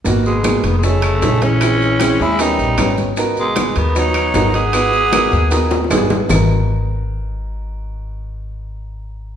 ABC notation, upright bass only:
X:1
M:4/4
L:1/8
Q:1/4=154
K:G#m
V:1 name="Upright bass" clef=bass
G,,,3 ^E,,,3 A,,,2- | A,,,3 D,,2 A,,, G,,,2- | G,,,3 D,,3 G,,,2- | G,,,3 D,,3 G,,,2 |
G,,,8- | G,,,8 |]